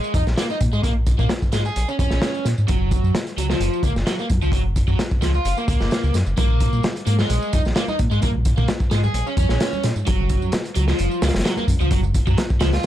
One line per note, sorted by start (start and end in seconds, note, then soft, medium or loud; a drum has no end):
0.00 0.13 G#3 loud
0.00 tambourine soft
0.14 0.23 F2 loud
0.14 0.23 D#4 medium
0.14 kick loud
0.14 closed hi-hat medium
0.14 tambourine medium
0.27 0.35 A#1 medium
0.27 snare soft
0.27 tambourine soft
0.37 0.46 A#3 medium
0.37 snare loud
0.37 closed hi-hat medium
0.37 tambourine soft
0.50 0.57 D#4 medium
0.50 tambourine soft
0.60 0.70 A#2 loud
0.60 kick medium
0.60 closed hi-hat medium
0.60 tambourine medium
0.73 0.81 G#2 loud
0.73 0.83 G#3 loud
0.73 tambourine soft
0.83 1.14 A#1 loud
0.83 0.92 A#3 medium
0.83 kick loud
0.83 closed hi-hat medium
0.83 tambourine soft
1.06 kick loud
1.06 closed hi-hat medium
1.06 tambourine medium
1.19 1.27 A#2 medium
1.19 1.29 A#3 medium
1.19 kick loud
1.19 tambourine soft
1.29 snare loud
1.29 closed hi-hat medium
1.29 tambourine soft
1.42 kick medium
1.42 tambourine soft
1.52 1.70 G#2 medium
1.52 1.61 G#3 medium
1.52 snare medium
1.52 closed hi-hat medium
1.52 tambourine medium
1.65 1.87 G#4 medium
1.65 tambourine soft
1.76 1.85 A#1 medium
1.76 closed hi-hat medium
1.76 tambourine soft
1.88 1.95 C#4 medium
1.88 tambourine soft
1.99 2.08 F2 loud
1.99 2.44 C#4 medium
1.99 kick medium
1.99 closed hi-hat medium
1.99 tambourine medium
2.11 2.20 A#1 medium
2.11 snare soft
2.11 tambourine soft
2.22 snare loud
2.22 closed hi-hat medium
2.22 tambourine soft
2.34 tambourine soft
2.45 2.54 A#2 loud
2.45 snare soft
2.45 closed hi-hat medium
2.45 tambourine medium
2.58 2.66 G#2 loud
2.58 tambourine soft
2.68 2.99 F#1 loud
2.68 3.14 F#3 medium
2.68 kick loud
2.68 closed hi-hat medium
2.68 tambourine soft
2.91 kick loud
2.91 closed hi-hat medium
2.91 tambourine medium
3.04 3.12 F#2 medium
3.04 tambourine soft
3.15 snare loud
3.15 closed hi-hat loud
3.15 tambourine soft
3.27 closed hi-hat soft
3.27 tambourine soft
3.38 3.55 C#2 medium
3.38 3.46 F#3 medium
3.38 closed hi-hat medium
3.38 tambourine medium
3.50 3.83 F3 loud
3.50 snare medium
3.50 tambourine soft
3.60 3.69 F#1 loud
3.60 closed hi-hat medium
3.60 tambourine soft
3.73 tambourine soft
3.83 3.92 C#2 loud
3.83 3.92 A#3 medium
3.83 kick medium
3.83 closed hi-hat medium
3.83 tambourine medium
3.96 4.04 F#1 medium
3.96 snare soft
3.96 tambourine soft
4.07 4.15 F#3 loud
4.07 snare loud
4.07 closed hi-hat medium
4.07 tambourine soft
4.19 4.26 A#3 medium
4.19 tambourine soft
4.30 4.39 F#2 loud
4.30 kick loud
4.30 closed hi-hat medium
4.30 tambourine medium
4.42 4.50 C#2 loud
4.42 4.52 F3 loud
4.42 tambourine soft
4.52 4.82 F#1 loud
4.52 4.61 F#3 medium
4.52 kick loud
4.52 closed hi-hat medium
4.52 tambourine soft
4.76 kick medium
4.76 closed hi-hat medium
4.76 tambourine medium
4.88 4.96 F#2 medium
4.88 4.99 F#3 medium
4.88 kick loud
4.88 tambourine soft
4.99 snare loud
4.99 closed hi-hat medium
4.99 tambourine soft
5.11 kick loud
5.11 tambourine soft
5.22 5.39 C#2 medium
5.22 5.30 F3 medium
5.22 snare medium
5.22 closed hi-hat medium
5.22 tambourine medium
5.34 5.57 F4 medium
5.34 tambourine soft
5.45 5.54 F#1 loud
5.45 closed hi-hat medium
5.45 tambourine soft
5.57 5.65 A#3 medium
5.57 tambourine soft
5.68 5.77 C#2 loud
5.68 6.14 A#3 loud
5.68 kick loud
5.68 closed hi-hat medium
5.68 tambourine medium
5.80 5.89 F#1 medium
5.80 snare soft
5.80 tambourine soft
5.91 snare loud
5.91 closed hi-hat medium
5.91 tambourine soft
6.03 6.12 C#2 medium
6.03 tambourine soft
6.14 6.23 F#2 medium
6.14 snare soft
6.14 closed hi-hat medium
6.14 tambourine medium
6.26 6.35 F#1 medium
6.26 tambourine soft
6.37 6.68 A#1 loud
6.37 6.83 A#3 medium
6.37 kick loud
6.37 closed hi-hat medium
6.37 tambourine soft
6.37 high conga medium
6.50 low conga medium
6.60 kick medium
6.60 closed hi-hat medium
6.60 tambourine medium
6.73 6.81 A#2 medium
6.73 tambourine soft
6.73 high conga medium
6.83 snare loud
6.83 closed hi-hat medium
6.83 tambourine soft
6.96 closed hi-hat soft
6.96 tambourine soft
7.06 7.24 G#2 medium
7.06 7.15 A#3 medium
7.06 closed hi-hat medium
7.06 tambourine medium
7.19 7.52 G#3 loud
7.19 snare soft
7.19 tambourine soft
7.19 high conga loud
7.30 7.39 A#1 loud
7.30 closed hi-hat medium
7.30 tambourine soft
7.42 tambourine soft
7.53 7.62 F2 loud
7.53 7.61 D#4 medium
7.53 kick loud
7.53 closed hi-hat medium
7.53 tambourine medium
7.53 high conga medium
7.65 7.73 A#1 medium
7.65 snare soft
7.65 tambourine soft
7.76 7.84 A#3 loud
7.76 snare loud
7.76 closed hi-hat medium
7.76 tambourine soft
7.88 7.95 D#4 medium
7.88 tambourine soft
7.88 high conga medium
7.99 8.08 A#2 medium
7.99 kick medium
7.99 closed hi-hat medium
7.99 tambourine medium
8.11 8.19 G#2 loud
8.11 8.21 G#3 loud
8.11 tambourine soft
8.22 8.53 A#1 loud
8.22 8.30 A#3 medium
8.22 kick loud
8.22 closed hi-hat medium
8.22 tambourine soft
8.22 high conga medium
8.35 low conga medium
8.45 kick medium
8.45 closed hi-hat medium
8.45 tambourine medium
8.57 8.66 A#2 medium
8.57 8.68 A#3 medium
8.57 kick loud
8.57 tambourine soft
8.57 high conga medium
8.68 snare loud
8.68 closed hi-hat medium
8.68 tambourine soft
8.80 kick loud
8.80 tambourine soft
8.91 9.09 G#2 medium
8.91 8.99 G#3 loud
8.91 snare medium
8.91 closed hi-hat medium
8.91 tambourine medium
9.04 9.26 G#4 medium
9.04 tambourine soft
9.04 high conga medium
9.14 9.23 A#1 loud
9.14 closed hi-hat medium
9.14 tambourine soft
9.27 9.34 C#4 medium
9.27 tambourine soft
9.37 9.46 F2 loud
9.37 9.83 C#4 loud
9.37 kick medium
9.37 closed hi-hat medium
9.37 tambourine medium
9.37 high conga medium
9.49 9.58 A#1 loud
9.49 snare soft
9.49 tambourine soft
9.60 snare loud
9.60 closed hi-hat medium
9.60 tambourine soft
9.73 tambourine soft
9.73 high conga medium
9.83 9.93 A#2 loud
9.83 snare soft
9.83 closed hi-hat medium
9.83 tambourine medium
9.96 10.04 G#2 loud
9.96 tambourine soft
10.07 10.37 F#1 loud
10.07 10.52 F#3 medium
10.07 kick loud
10.07 closed hi-hat medium
10.07 tambourine soft
10.07 high conga medium
10.20 low conga medium
10.29 kick medium
10.29 closed hi-hat medium
10.29 tambourine medium
10.42 10.50 F#2 medium
10.42 tambourine soft
10.42 high conga medium
10.52 snare loud
10.52 closed hi-hat loud
10.52 tambourine soft
10.65 closed hi-hat soft
10.65 tambourine soft
10.75 10.93 C#2 medium
10.75 10.84 F#3 medium
10.75 closed hi-hat medium
10.75 tambourine medium
10.88 11.21 F3 loud
10.88 snare soft
10.88 tambourine soft
10.88 high conga medium
10.99 11.08 F#1 loud
10.99 closed hi-hat medium
10.99 tambourine soft
11.11 tambourine soft
11.22 11.32 C#2 loud
11.22 11.30 A#3 medium
11.22 snare medium
11.22 closed hi-hat medium
11.22 tambourine medium
11.22 high conga medium
11.29 snare medium
11.29 closed hi-hat medium
11.34 11.43 F#1 medium
11.34 snare medium
11.34 closed hi-hat medium
11.34 tambourine soft
11.39 snare medium
11.39 closed hi-hat medium
11.45 11.53 F#3 loud
11.45 snare loud
11.45 closed hi-hat medium
11.45 tambourine soft
11.57 11.64 A#3 medium
11.57 tambourine soft
11.57 high conga medium
11.68 11.77 F#2 loud
11.68 kick medium
11.68 closed hi-hat medium
11.68 tambourine medium
11.81 11.89 C#2 loud
11.81 11.90 F3 loud
11.81 tambourine soft
11.91 12.21 F#1 loud
11.91 11.99 F#3 medium
11.91 kick loud
11.91 closed hi-hat medium
11.91 tambourine soft
11.91 high conga medium
12.03 tambourine soft
12.03 low conga medium
12.14 kick medium
12.14 closed hi-hat medium
12.14 tambourine medium
12.27 12.35 F#2 medium
12.27 12.37 F#3 medium
12.27 kick loud
12.27 tambourine soft
12.27 high conga medium
12.38 snare loud
12.38 closed hi-hat medium
12.38 tambourine soft
12.50 kick loud
12.50 tambourine soft
12.60 12.78 C#2 medium
12.60 12.69 F3 loud
12.60 snare loud
12.60 closed hi-hat medium
12.60 tambourine medium
12.73 12.86 F4 medium
12.73 snare loud
12.73 closed hi-hat medium
12.73 tambourine soft
12.73 high conga medium